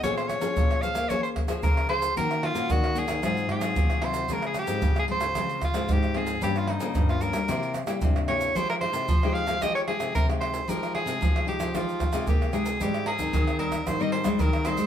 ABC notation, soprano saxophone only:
X:1
M:4/4
L:1/16
Q:1/4=113
K:Fm
V:1 name="Soprano saxophone"
d c d4 f2 d c z2 B2 c2 | B2 F2 _G2 A2 A2 A4 c2 | B A G3 A c4 F2 G2 A2 | G F E3 F B4 z4 d2 |
c B c4 f2 e d A2 B2 c2 | B2 A4 G2 F4 G2 A2 | [K:Ab] G2 A4 B2 c e c2 B2 c2 |]